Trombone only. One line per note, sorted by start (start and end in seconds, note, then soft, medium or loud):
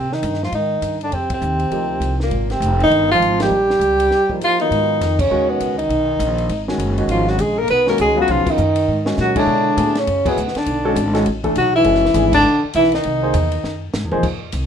0.00 0.14 C3 medium
0.13 0.42 D#3 medium
0.42 0.52 F3 medium
0.54 0.98 D#3 medium
1.02 1.16 D3 medium
1.14 1.31 C3 medium
1.31 2.17 C3 medium
2.22 2.53 A#2 medium
2.52 2.81 C3 medium
2.83 3.09 D#3 medium
3.13 3.39 F3 medium
3.43 4.39 G3 medium
4.43 4.59 F3 medium
4.61 5.22 D#3 medium
5.21 5.52 C#3 medium
5.50 5.79 B2 medium
5.80 6.64 D#3 medium
7.10 7.31 F3 medium
7.29 7.42 F#3 medium
7.41 7.62 G#3 medium
7.60 7.70 A#3 medium
7.71 7.87 B3 medium
7.88 7.99 A#3 medium
8.01 8.17 G#3 medium
8.19 8.31 F#3 medium
8.30 8.50 F3 medium
8.48 9.07 D#3 medium
9.20 9.36 F#3 medium
9.38 9.99 D3 medium
9.98 10.28 C#3 medium
10.27 10.57 B2 medium
10.56 11.17 D3 medium
11.59 11.74 F#3 medium
11.76 12.31 E3 medium
12.35 12.62 D3 medium
12.76 12.93 E3 medium
12.95 13.91 D#3 medium